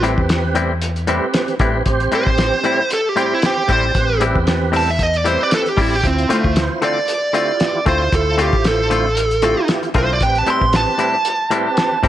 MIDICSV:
0, 0, Header, 1, 7, 480
1, 0, Start_track
1, 0, Key_signature, 0, "minor"
1, 0, Tempo, 521739
1, 1713, Time_signature, 4, 2, 24, 8
1, 11115, End_track
2, 0, Start_track
2, 0, Title_t, "Lead electric guitar"
2, 0, Program_c, 0, 29
2, 1977, Note_on_c, 0, 72, 94
2, 2663, Note_off_c, 0, 72, 0
2, 2701, Note_on_c, 0, 69, 80
2, 2841, Note_off_c, 0, 69, 0
2, 2841, Note_on_c, 0, 67, 67
2, 3057, Note_off_c, 0, 67, 0
2, 3075, Note_on_c, 0, 64, 79
2, 3183, Note_off_c, 0, 64, 0
2, 3183, Note_on_c, 0, 67, 77
2, 3401, Note_off_c, 0, 67, 0
2, 3427, Note_on_c, 0, 72, 102
2, 3876, Note_off_c, 0, 72, 0
2, 4384, Note_on_c, 0, 81, 89
2, 4498, Note_off_c, 0, 81, 0
2, 4513, Note_on_c, 0, 76, 79
2, 4603, Note_off_c, 0, 76, 0
2, 4628, Note_on_c, 0, 75, 84
2, 4757, Note_off_c, 0, 75, 0
2, 4757, Note_on_c, 0, 74, 77
2, 4855, Note_off_c, 0, 74, 0
2, 4855, Note_on_c, 0, 72, 78
2, 4997, Note_off_c, 0, 72, 0
2, 4997, Note_on_c, 0, 74, 80
2, 5085, Note_off_c, 0, 74, 0
2, 5098, Note_on_c, 0, 69, 80
2, 5233, Note_off_c, 0, 69, 0
2, 5233, Note_on_c, 0, 67, 78
2, 5345, Note_off_c, 0, 67, 0
2, 5345, Note_on_c, 0, 64, 77
2, 5479, Note_off_c, 0, 64, 0
2, 5479, Note_on_c, 0, 67, 76
2, 5566, Note_off_c, 0, 67, 0
2, 5587, Note_on_c, 0, 60, 79
2, 5803, Note_off_c, 0, 60, 0
2, 5818, Note_on_c, 0, 57, 91
2, 6038, Note_off_c, 0, 57, 0
2, 6295, Note_on_c, 0, 74, 86
2, 7214, Note_off_c, 0, 74, 0
2, 7253, Note_on_c, 0, 72, 85
2, 7475, Note_off_c, 0, 72, 0
2, 7500, Note_on_c, 0, 69, 86
2, 7718, Note_off_c, 0, 69, 0
2, 7744, Note_on_c, 0, 67, 82
2, 7961, Note_off_c, 0, 67, 0
2, 7982, Note_on_c, 0, 69, 88
2, 8898, Note_off_c, 0, 69, 0
2, 9184, Note_on_c, 0, 72, 92
2, 9318, Note_off_c, 0, 72, 0
2, 9318, Note_on_c, 0, 74, 94
2, 9405, Note_off_c, 0, 74, 0
2, 9412, Note_on_c, 0, 79, 90
2, 9553, Note_off_c, 0, 79, 0
2, 9553, Note_on_c, 0, 81, 90
2, 9642, Note_off_c, 0, 81, 0
2, 9662, Note_on_c, 0, 84, 94
2, 9880, Note_off_c, 0, 84, 0
2, 9901, Note_on_c, 0, 81, 93
2, 11115, Note_off_c, 0, 81, 0
2, 11115, End_track
3, 0, Start_track
3, 0, Title_t, "Tonewheel organ"
3, 0, Program_c, 1, 16
3, 0, Note_on_c, 1, 60, 66
3, 0, Note_on_c, 1, 67, 62
3, 0, Note_on_c, 1, 71, 77
3, 661, Note_off_c, 1, 60, 0
3, 661, Note_off_c, 1, 71, 0
3, 663, Note_off_c, 1, 67, 0
3, 991, Note_on_c, 1, 60, 80
3, 993, Note_on_c, 1, 67, 73
3, 993, Note_on_c, 1, 71, 91
3, 1424, Note_off_c, 1, 60, 0
3, 1425, Note_off_c, 1, 67, 0
3, 1425, Note_off_c, 1, 71, 0
3, 1465, Note_on_c, 1, 60, 74
3, 1465, Note_on_c, 1, 67, 70
3, 1465, Note_on_c, 1, 71, 79
3, 1685, Note_off_c, 1, 67, 0
3, 1685, Note_off_c, 1, 71, 0
3, 1686, Note_off_c, 1, 60, 0
3, 1709, Note_on_c, 1, 60, 80
3, 1709, Note_on_c, 1, 67, 74
3, 1712, Note_on_c, 1, 72, 92
3, 2576, Note_off_c, 1, 60, 0
3, 2576, Note_off_c, 1, 67, 0
3, 2577, Note_off_c, 1, 72, 0
3, 2909, Note_on_c, 1, 72, 75
3, 2911, Note_on_c, 1, 60, 68
3, 2915, Note_on_c, 1, 67, 65
3, 3343, Note_off_c, 1, 72, 0
3, 3344, Note_off_c, 1, 60, 0
3, 3346, Note_off_c, 1, 67, 0
3, 3391, Note_on_c, 1, 74, 71
3, 3395, Note_on_c, 1, 60, 62
3, 3396, Note_on_c, 1, 67, 58
3, 3608, Note_off_c, 1, 74, 0
3, 3610, Note_off_c, 1, 60, 0
3, 3610, Note_off_c, 1, 67, 0
3, 3631, Note_on_c, 1, 67, 64
3, 3633, Note_on_c, 1, 71, 78
3, 3635, Note_on_c, 1, 60, 71
3, 4496, Note_off_c, 1, 67, 0
3, 4497, Note_off_c, 1, 71, 0
3, 4498, Note_off_c, 1, 60, 0
3, 4838, Note_on_c, 1, 60, 66
3, 4840, Note_on_c, 1, 71, 76
3, 4841, Note_on_c, 1, 67, 64
3, 5267, Note_off_c, 1, 60, 0
3, 5268, Note_off_c, 1, 71, 0
3, 5269, Note_off_c, 1, 67, 0
3, 5316, Note_on_c, 1, 67, 54
3, 5317, Note_on_c, 1, 60, 60
3, 5319, Note_on_c, 1, 74, 67
3, 5530, Note_off_c, 1, 60, 0
3, 5530, Note_off_c, 1, 67, 0
3, 5531, Note_off_c, 1, 74, 0
3, 5561, Note_on_c, 1, 64, 70
3, 5561, Note_on_c, 1, 72, 75
3, 5562, Note_on_c, 1, 65, 61
3, 6420, Note_off_c, 1, 72, 0
3, 6421, Note_off_c, 1, 64, 0
3, 6421, Note_off_c, 1, 65, 0
3, 6748, Note_on_c, 1, 65, 62
3, 6749, Note_on_c, 1, 64, 73
3, 6749, Note_on_c, 1, 67, 74
3, 7182, Note_off_c, 1, 64, 0
3, 7182, Note_off_c, 1, 65, 0
3, 7182, Note_off_c, 1, 67, 0
3, 7230, Note_on_c, 1, 64, 63
3, 7233, Note_on_c, 1, 65, 59
3, 7233, Note_on_c, 1, 72, 64
3, 7447, Note_off_c, 1, 64, 0
3, 7448, Note_off_c, 1, 65, 0
3, 7448, Note_off_c, 1, 72, 0
3, 7469, Note_on_c, 1, 64, 70
3, 7470, Note_on_c, 1, 72, 76
3, 7471, Note_on_c, 1, 65, 67
3, 8334, Note_off_c, 1, 64, 0
3, 8335, Note_off_c, 1, 65, 0
3, 8335, Note_off_c, 1, 72, 0
3, 8670, Note_on_c, 1, 65, 72
3, 8673, Note_on_c, 1, 64, 80
3, 8676, Note_on_c, 1, 67, 92
3, 9102, Note_off_c, 1, 65, 0
3, 9104, Note_off_c, 1, 64, 0
3, 9106, Note_off_c, 1, 67, 0
3, 9156, Note_on_c, 1, 65, 55
3, 9158, Note_on_c, 1, 72, 71
3, 9161, Note_on_c, 1, 64, 67
3, 9370, Note_off_c, 1, 65, 0
3, 9370, Note_off_c, 1, 72, 0
3, 9372, Note_off_c, 1, 64, 0
3, 9397, Note_on_c, 1, 60, 69
3, 9399, Note_on_c, 1, 71, 77
3, 9400, Note_on_c, 1, 67, 63
3, 10259, Note_off_c, 1, 60, 0
3, 10259, Note_off_c, 1, 71, 0
3, 10260, Note_off_c, 1, 67, 0
3, 10596, Note_on_c, 1, 60, 80
3, 10601, Note_on_c, 1, 71, 93
3, 10602, Note_on_c, 1, 67, 80
3, 11025, Note_off_c, 1, 60, 0
3, 11028, Note_off_c, 1, 71, 0
3, 11029, Note_off_c, 1, 67, 0
3, 11073, Note_on_c, 1, 60, 75
3, 11075, Note_on_c, 1, 69, 77
3, 11076, Note_on_c, 1, 67, 68
3, 11115, Note_off_c, 1, 60, 0
3, 11115, Note_off_c, 1, 67, 0
3, 11115, Note_off_c, 1, 69, 0
3, 11115, End_track
4, 0, Start_track
4, 0, Title_t, "Clean electric guitar"
4, 0, Program_c, 2, 27
4, 25, Note_on_c, 2, 45, 70
4, 30, Note_on_c, 2, 55, 75
4, 34, Note_on_c, 2, 60, 77
4, 38, Note_on_c, 2, 64, 70
4, 184, Note_off_c, 2, 45, 0
4, 186, Note_off_c, 2, 55, 0
4, 189, Note_off_c, 2, 60, 0
4, 191, Note_off_c, 2, 64, 0
4, 504, Note_on_c, 2, 45, 81
4, 509, Note_on_c, 2, 55, 78
4, 515, Note_on_c, 2, 60, 93
4, 519, Note_on_c, 2, 64, 86
4, 664, Note_off_c, 2, 45, 0
4, 666, Note_off_c, 2, 55, 0
4, 669, Note_off_c, 2, 60, 0
4, 671, Note_off_c, 2, 64, 0
4, 987, Note_on_c, 2, 45, 82
4, 995, Note_on_c, 2, 55, 84
4, 999, Note_on_c, 2, 60, 92
4, 1002, Note_on_c, 2, 64, 87
4, 1145, Note_off_c, 2, 45, 0
4, 1149, Note_off_c, 2, 55, 0
4, 1151, Note_off_c, 2, 60, 0
4, 1153, Note_off_c, 2, 64, 0
4, 1470, Note_on_c, 2, 45, 88
4, 1473, Note_on_c, 2, 55, 86
4, 1480, Note_on_c, 2, 60, 90
4, 1482, Note_on_c, 2, 64, 101
4, 1627, Note_off_c, 2, 45, 0
4, 1628, Note_off_c, 2, 55, 0
4, 1631, Note_off_c, 2, 60, 0
4, 1633, Note_off_c, 2, 64, 0
4, 1947, Note_on_c, 2, 45, 73
4, 1954, Note_on_c, 2, 55, 72
4, 1958, Note_on_c, 2, 60, 76
4, 1962, Note_on_c, 2, 64, 80
4, 2105, Note_off_c, 2, 45, 0
4, 2109, Note_off_c, 2, 55, 0
4, 2110, Note_off_c, 2, 60, 0
4, 2113, Note_off_c, 2, 64, 0
4, 2428, Note_on_c, 2, 45, 77
4, 2434, Note_on_c, 2, 55, 73
4, 2438, Note_on_c, 2, 60, 73
4, 2444, Note_on_c, 2, 64, 85
4, 2585, Note_off_c, 2, 45, 0
4, 2588, Note_off_c, 2, 55, 0
4, 2590, Note_off_c, 2, 60, 0
4, 2593, Note_off_c, 2, 64, 0
4, 2906, Note_on_c, 2, 45, 70
4, 2911, Note_on_c, 2, 55, 75
4, 2916, Note_on_c, 2, 60, 83
4, 2920, Note_on_c, 2, 64, 88
4, 3064, Note_off_c, 2, 45, 0
4, 3067, Note_off_c, 2, 55, 0
4, 3069, Note_off_c, 2, 60, 0
4, 3071, Note_off_c, 2, 64, 0
4, 3388, Note_on_c, 2, 45, 83
4, 3395, Note_on_c, 2, 55, 78
4, 3398, Note_on_c, 2, 60, 83
4, 3403, Note_on_c, 2, 64, 80
4, 3545, Note_off_c, 2, 45, 0
4, 3549, Note_off_c, 2, 55, 0
4, 3550, Note_off_c, 2, 60, 0
4, 3553, Note_off_c, 2, 64, 0
4, 3867, Note_on_c, 2, 45, 66
4, 3874, Note_on_c, 2, 55, 75
4, 3880, Note_on_c, 2, 60, 79
4, 3883, Note_on_c, 2, 64, 88
4, 4025, Note_off_c, 2, 45, 0
4, 4028, Note_off_c, 2, 55, 0
4, 4031, Note_off_c, 2, 60, 0
4, 4032, Note_off_c, 2, 64, 0
4, 4342, Note_on_c, 2, 45, 72
4, 4349, Note_on_c, 2, 55, 73
4, 4353, Note_on_c, 2, 60, 86
4, 4356, Note_on_c, 2, 64, 81
4, 4502, Note_off_c, 2, 45, 0
4, 4506, Note_off_c, 2, 55, 0
4, 4507, Note_off_c, 2, 60, 0
4, 4509, Note_off_c, 2, 64, 0
4, 4825, Note_on_c, 2, 45, 68
4, 4831, Note_on_c, 2, 55, 79
4, 4836, Note_on_c, 2, 60, 80
4, 4840, Note_on_c, 2, 64, 73
4, 4983, Note_off_c, 2, 45, 0
4, 4986, Note_off_c, 2, 55, 0
4, 4989, Note_off_c, 2, 60, 0
4, 4991, Note_off_c, 2, 64, 0
4, 5307, Note_on_c, 2, 45, 70
4, 5311, Note_on_c, 2, 55, 85
4, 5317, Note_on_c, 2, 60, 73
4, 5320, Note_on_c, 2, 64, 79
4, 5464, Note_off_c, 2, 45, 0
4, 5466, Note_off_c, 2, 55, 0
4, 5469, Note_off_c, 2, 60, 0
4, 5471, Note_off_c, 2, 64, 0
4, 5789, Note_on_c, 2, 50, 71
4, 5795, Note_on_c, 2, 57, 69
4, 5799, Note_on_c, 2, 60, 82
4, 5802, Note_on_c, 2, 65, 74
4, 5945, Note_off_c, 2, 50, 0
4, 5948, Note_off_c, 2, 57, 0
4, 5950, Note_off_c, 2, 60, 0
4, 5951, Note_off_c, 2, 65, 0
4, 6271, Note_on_c, 2, 50, 67
4, 6276, Note_on_c, 2, 57, 76
4, 6283, Note_on_c, 2, 60, 78
4, 6285, Note_on_c, 2, 65, 75
4, 6426, Note_off_c, 2, 50, 0
4, 6428, Note_off_c, 2, 57, 0
4, 6432, Note_off_c, 2, 60, 0
4, 6433, Note_off_c, 2, 65, 0
4, 6747, Note_on_c, 2, 50, 72
4, 6751, Note_on_c, 2, 57, 70
4, 6757, Note_on_c, 2, 60, 85
4, 6763, Note_on_c, 2, 65, 88
4, 6904, Note_off_c, 2, 50, 0
4, 6906, Note_off_c, 2, 57, 0
4, 6909, Note_off_c, 2, 60, 0
4, 6912, Note_off_c, 2, 65, 0
4, 7228, Note_on_c, 2, 50, 69
4, 7232, Note_on_c, 2, 57, 77
4, 7238, Note_on_c, 2, 60, 86
4, 7245, Note_on_c, 2, 65, 85
4, 7384, Note_off_c, 2, 50, 0
4, 7386, Note_off_c, 2, 57, 0
4, 7389, Note_off_c, 2, 60, 0
4, 7393, Note_off_c, 2, 65, 0
4, 7706, Note_on_c, 2, 50, 70
4, 7710, Note_on_c, 2, 57, 70
4, 7716, Note_on_c, 2, 60, 74
4, 7720, Note_on_c, 2, 65, 85
4, 7863, Note_off_c, 2, 50, 0
4, 7865, Note_off_c, 2, 57, 0
4, 7868, Note_off_c, 2, 60, 0
4, 7870, Note_off_c, 2, 65, 0
4, 8189, Note_on_c, 2, 50, 72
4, 8194, Note_on_c, 2, 57, 74
4, 8200, Note_on_c, 2, 60, 74
4, 8205, Note_on_c, 2, 65, 79
4, 8345, Note_off_c, 2, 50, 0
4, 8347, Note_off_c, 2, 57, 0
4, 8350, Note_off_c, 2, 60, 0
4, 8353, Note_off_c, 2, 65, 0
4, 8672, Note_on_c, 2, 50, 83
4, 8678, Note_on_c, 2, 57, 91
4, 8683, Note_on_c, 2, 60, 86
4, 8688, Note_on_c, 2, 65, 85
4, 8826, Note_off_c, 2, 50, 0
4, 8829, Note_off_c, 2, 57, 0
4, 8831, Note_off_c, 2, 60, 0
4, 8834, Note_off_c, 2, 65, 0
4, 9150, Note_on_c, 2, 50, 80
4, 9154, Note_on_c, 2, 57, 84
4, 9158, Note_on_c, 2, 60, 87
4, 9162, Note_on_c, 2, 65, 87
4, 9305, Note_off_c, 2, 50, 0
4, 9307, Note_off_c, 2, 57, 0
4, 9309, Note_off_c, 2, 60, 0
4, 9311, Note_off_c, 2, 65, 0
4, 9628, Note_on_c, 2, 45, 70
4, 9635, Note_on_c, 2, 55, 75
4, 9639, Note_on_c, 2, 60, 87
4, 9643, Note_on_c, 2, 64, 80
4, 9784, Note_off_c, 2, 45, 0
4, 9787, Note_off_c, 2, 55, 0
4, 9789, Note_off_c, 2, 60, 0
4, 9792, Note_off_c, 2, 64, 0
4, 10104, Note_on_c, 2, 45, 76
4, 10109, Note_on_c, 2, 55, 69
4, 10114, Note_on_c, 2, 60, 74
4, 10119, Note_on_c, 2, 64, 82
4, 10262, Note_off_c, 2, 45, 0
4, 10265, Note_off_c, 2, 55, 0
4, 10267, Note_off_c, 2, 60, 0
4, 10270, Note_off_c, 2, 64, 0
4, 10585, Note_on_c, 2, 45, 90
4, 10592, Note_on_c, 2, 55, 88
4, 10597, Note_on_c, 2, 60, 96
4, 10602, Note_on_c, 2, 64, 96
4, 10743, Note_off_c, 2, 45, 0
4, 10746, Note_off_c, 2, 55, 0
4, 10748, Note_off_c, 2, 60, 0
4, 10751, Note_off_c, 2, 64, 0
4, 11065, Note_on_c, 2, 45, 86
4, 11072, Note_on_c, 2, 55, 96
4, 11076, Note_on_c, 2, 60, 102
4, 11080, Note_on_c, 2, 64, 90
4, 11115, Note_off_c, 2, 45, 0
4, 11115, Note_off_c, 2, 55, 0
4, 11115, Note_off_c, 2, 60, 0
4, 11115, Note_off_c, 2, 64, 0
4, 11115, End_track
5, 0, Start_track
5, 0, Title_t, "Fretless electric bass"
5, 0, Program_c, 3, 35
5, 0, Note_on_c, 3, 33, 83
5, 131, Note_off_c, 3, 33, 0
5, 164, Note_on_c, 3, 40, 76
5, 1089, Note_off_c, 3, 40, 0
5, 1468, Note_on_c, 3, 33, 86
5, 1688, Note_off_c, 3, 33, 0
5, 1712, Note_on_c, 3, 33, 87
5, 1930, Note_off_c, 3, 33, 0
5, 2085, Note_on_c, 3, 33, 77
5, 2303, Note_off_c, 3, 33, 0
5, 3395, Note_on_c, 3, 33, 81
5, 3611, Note_off_c, 3, 33, 0
5, 3635, Note_on_c, 3, 33, 88
5, 3972, Note_off_c, 3, 33, 0
5, 4007, Note_on_c, 3, 40, 79
5, 4929, Note_off_c, 3, 40, 0
5, 5313, Note_on_c, 3, 33, 87
5, 5530, Note_off_c, 3, 33, 0
5, 5556, Note_on_c, 3, 38, 81
5, 5771, Note_off_c, 3, 38, 0
5, 5928, Note_on_c, 3, 38, 80
5, 6144, Note_off_c, 3, 38, 0
5, 7235, Note_on_c, 3, 38, 83
5, 7450, Note_off_c, 3, 38, 0
5, 7475, Note_on_c, 3, 38, 91
5, 7811, Note_off_c, 3, 38, 0
5, 7846, Note_on_c, 3, 33, 81
5, 8768, Note_off_c, 3, 33, 0
5, 9153, Note_on_c, 3, 35, 94
5, 9369, Note_off_c, 3, 35, 0
5, 9394, Note_on_c, 3, 33, 92
5, 9609, Note_off_c, 3, 33, 0
5, 9768, Note_on_c, 3, 33, 85
5, 9983, Note_off_c, 3, 33, 0
5, 11074, Note_on_c, 3, 33, 78
5, 11115, Note_off_c, 3, 33, 0
5, 11115, End_track
6, 0, Start_track
6, 0, Title_t, "Muted fretless electric bass strokes"
6, 1947, Note_on_c, 9, 29, 37
6, 2039, Note_off_c, 9, 29, 0
6, 5792, Note_on_c, 9, 29, 35
6, 5884, Note_off_c, 9, 29, 0
6, 11115, End_track
7, 0, Start_track
7, 0, Title_t, "Drums"
7, 32, Note_on_c, 9, 42, 57
7, 124, Note_off_c, 9, 42, 0
7, 164, Note_on_c, 9, 36, 83
7, 256, Note_off_c, 9, 36, 0
7, 269, Note_on_c, 9, 42, 79
7, 276, Note_on_c, 9, 38, 100
7, 361, Note_off_c, 9, 42, 0
7, 368, Note_off_c, 9, 38, 0
7, 508, Note_on_c, 9, 42, 58
7, 600, Note_off_c, 9, 42, 0
7, 750, Note_on_c, 9, 42, 81
7, 842, Note_off_c, 9, 42, 0
7, 884, Note_on_c, 9, 42, 37
7, 976, Note_off_c, 9, 42, 0
7, 988, Note_on_c, 9, 42, 62
7, 1080, Note_off_c, 9, 42, 0
7, 1229, Note_on_c, 9, 42, 79
7, 1237, Note_on_c, 9, 38, 101
7, 1321, Note_off_c, 9, 42, 0
7, 1329, Note_off_c, 9, 38, 0
7, 1362, Note_on_c, 9, 42, 36
7, 1454, Note_off_c, 9, 42, 0
7, 1467, Note_on_c, 9, 42, 64
7, 1470, Note_on_c, 9, 36, 86
7, 1559, Note_off_c, 9, 42, 0
7, 1562, Note_off_c, 9, 36, 0
7, 1708, Note_on_c, 9, 42, 79
7, 1711, Note_on_c, 9, 36, 102
7, 1800, Note_off_c, 9, 42, 0
7, 1803, Note_off_c, 9, 36, 0
7, 1842, Note_on_c, 9, 42, 35
7, 1934, Note_off_c, 9, 42, 0
7, 1948, Note_on_c, 9, 42, 55
7, 2040, Note_off_c, 9, 42, 0
7, 2085, Note_on_c, 9, 36, 78
7, 2177, Note_off_c, 9, 36, 0
7, 2188, Note_on_c, 9, 42, 73
7, 2195, Note_on_c, 9, 38, 112
7, 2280, Note_off_c, 9, 42, 0
7, 2287, Note_off_c, 9, 38, 0
7, 2429, Note_on_c, 9, 42, 53
7, 2521, Note_off_c, 9, 42, 0
7, 2672, Note_on_c, 9, 42, 77
7, 2764, Note_off_c, 9, 42, 0
7, 2913, Note_on_c, 9, 42, 54
7, 3005, Note_off_c, 9, 42, 0
7, 3150, Note_on_c, 9, 42, 75
7, 3157, Note_on_c, 9, 38, 100
7, 3242, Note_off_c, 9, 42, 0
7, 3249, Note_off_c, 9, 38, 0
7, 3392, Note_on_c, 9, 42, 57
7, 3394, Note_on_c, 9, 36, 84
7, 3484, Note_off_c, 9, 42, 0
7, 3486, Note_off_c, 9, 36, 0
7, 3633, Note_on_c, 9, 42, 72
7, 3634, Note_on_c, 9, 36, 100
7, 3725, Note_off_c, 9, 42, 0
7, 3726, Note_off_c, 9, 36, 0
7, 3871, Note_on_c, 9, 42, 55
7, 3963, Note_off_c, 9, 42, 0
7, 4007, Note_on_c, 9, 36, 85
7, 4099, Note_off_c, 9, 36, 0
7, 4112, Note_on_c, 9, 42, 78
7, 4119, Note_on_c, 9, 38, 104
7, 4204, Note_off_c, 9, 42, 0
7, 4211, Note_off_c, 9, 38, 0
7, 4354, Note_on_c, 9, 46, 67
7, 4446, Note_off_c, 9, 46, 0
7, 4592, Note_on_c, 9, 36, 66
7, 4592, Note_on_c, 9, 42, 80
7, 4684, Note_off_c, 9, 36, 0
7, 4684, Note_off_c, 9, 42, 0
7, 4726, Note_on_c, 9, 42, 36
7, 4818, Note_off_c, 9, 42, 0
7, 4835, Note_on_c, 9, 42, 62
7, 4927, Note_off_c, 9, 42, 0
7, 5072, Note_on_c, 9, 42, 80
7, 5079, Note_on_c, 9, 38, 92
7, 5164, Note_off_c, 9, 42, 0
7, 5171, Note_off_c, 9, 38, 0
7, 5207, Note_on_c, 9, 42, 38
7, 5299, Note_off_c, 9, 42, 0
7, 5314, Note_on_c, 9, 36, 83
7, 5315, Note_on_c, 9, 46, 79
7, 5406, Note_off_c, 9, 36, 0
7, 5407, Note_off_c, 9, 46, 0
7, 5554, Note_on_c, 9, 36, 103
7, 5555, Note_on_c, 9, 42, 75
7, 5646, Note_off_c, 9, 36, 0
7, 5647, Note_off_c, 9, 42, 0
7, 5691, Note_on_c, 9, 42, 37
7, 5783, Note_off_c, 9, 42, 0
7, 5797, Note_on_c, 9, 42, 64
7, 5889, Note_off_c, 9, 42, 0
7, 5928, Note_on_c, 9, 36, 81
7, 6020, Note_off_c, 9, 36, 0
7, 6035, Note_on_c, 9, 42, 85
7, 6042, Note_on_c, 9, 38, 112
7, 6127, Note_off_c, 9, 42, 0
7, 6134, Note_off_c, 9, 38, 0
7, 6274, Note_on_c, 9, 42, 57
7, 6366, Note_off_c, 9, 42, 0
7, 6514, Note_on_c, 9, 42, 79
7, 6606, Note_off_c, 9, 42, 0
7, 6755, Note_on_c, 9, 42, 59
7, 6847, Note_off_c, 9, 42, 0
7, 6992, Note_on_c, 9, 42, 68
7, 6999, Note_on_c, 9, 38, 101
7, 7084, Note_off_c, 9, 42, 0
7, 7091, Note_off_c, 9, 38, 0
7, 7233, Note_on_c, 9, 42, 60
7, 7235, Note_on_c, 9, 36, 84
7, 7325, Note_off_c, 9, 42, 0
7, 7327, Note_off_c, 9, 36, 0
7, 7475, Note_on_c, 9, 36, 100
7, 7475, Note_on_c, 9, 42, 74
7, 7567, Note_off_c, 9, 36, 0
7, 7567, Note_off_c, 9, 42, 0
7, 7715, Note_on_c, 9, 42, 57
7, 7807, Note_off_c, 9, 42, 0
7, 7848, Note_on_c, 9, 36, 85
7, 7940, Note_off_c, 9, 36, 0
7, 7953, Note_on_c, 9, 42, 81
7, 7960, Note_on_c, 9, 38, 104
7, 8045, Note_off_c, 9, 42, 0
7, 8052, Note_off_c, 9, 38, 0
7, 8197, Note_on_c, 9, 42, 58
7, 8289, Note_off_c, 9, 42, 0
7, 8435, Note_on_c, 9, 42, 81
7, 8527, Note_off_c, 9, 42, 0
7, 8565, Note_on_c, 9, 42, 38
7, 8657, Note_off_c, 9, 42, 0
7, 8668, Note_on_c, 9, 42, 62
7, 8760, Note_off_c, 9, 42, 0
7, 8907, Note_on_c, 9, 42, 81
7, 8914, Note_on_c, 9, 38, 109
7, 8999, Note_off_c, 9, 42, 0
7, 9006, Note_off_c, 9, 38, 0
7, 9044, Note_on_c, 9, 42, 37
7, 9136, Note_off_c, 9, 42, 0
7, 9148, Note_on_c, 9, 42, 62
7, 9152, Note_on_c, 9, 36, 86
7, 9240, Note_off_c, 9, 42, 0
7, 9244, Note_off_c, 9, 36, 0
7, 9389, Note_on_c, 9, 42, 81
7, 9392, Note_on_c, 9, 36, 102
7, 9481, Note_off_c, 9, 42, 0
7, 9484, Note_off_c, 9, 36, 0
7, 9525, Note_on_c, 9, 42, 36
7, 9617, Note_off_c, 9, 42, 0
7, 9628, Note_on_c, 9, 42, 63
7, 9720, Note_off_c, 9, 42, 0
7, 9766, Note_on_c, 9, 36, 85
7, 9858, Note_off_c, 9, 36, 0
7, 9871, Note_on_c, 9, 42, 82
7, 9878, Note_on_c, 9, 38, 104
7, 9963, Note_off_c, 9, 42, 0
7, 9970, Note_off_c, 9, 38, 0
7, 10109, Note_on_c, 9, 42, 59
7, 10201, Note_off_c, 9, 42, 0
7, 10349, Note_on_c, 9, 42, 79
7, 10441, Note_off_c, 9, 42, 0
7, 10590, Note_on_c, 9, 42, 59
7, 10682, Note_off_c, 9, 42, 0
7, 10828, Note_on_c, 9, 42, 72
7, 10836, Note_on_c, 9, 38, 101
7, 10920, Note_off_c, 9, 42, 0
7, 10928, Note_off_c, 9, 38, 0
7, 11072, Note_on_c, 9, 36, 86
7, 11073, Note_on_c, 9, 42, 62
7, 11115, Note_off_c, 9, 36, 0
7, 11115, Note_off_c, 9, 42, 0
7, 11115, End_track
0, 0, End_of_file